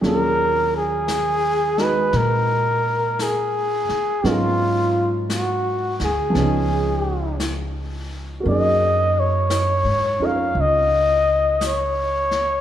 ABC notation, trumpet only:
X:1
M:4/4
L:1/16
Q:"Swing" 1/4=57
K:Ebm
V:1 name="Trumpet"
B2 A4 c2 B4 A4 | F3 z G2 A6 z4 | e2 d4 f2 e4 d4 |]